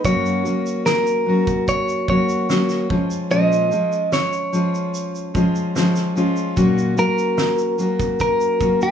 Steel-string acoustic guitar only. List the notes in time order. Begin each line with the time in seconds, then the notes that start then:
0.04 F#2 C#3 F#3 A#3 C#4 F#4
0.45 F#3 A#3 C#4 F#4
1.26 F#3 A#3 C#4 F#4
2.08 F#3 A#3 C#4 F#4
2.49 F#3 A#3 C#4 F#4
2.89 F3 G#3 C#4 F4
3.30 A#2 F3 G#3 C#4 F4
3.71 F3 G#3 C#4 F4
4.52 F3 G#3 C#4 F4
5.34 F3 G#3 C#4 F4
5.75 F3 G#3 C#4 F4
6.15 F3 G#3 C#4 F4
6.56 A#2 F#3 A#3 C#4 F#4
6.97 F#3 A#3 C#4 F#4
7.78 F#3 A#3 C#4 F#4
8.60 F#3 A#3 C#4 F#4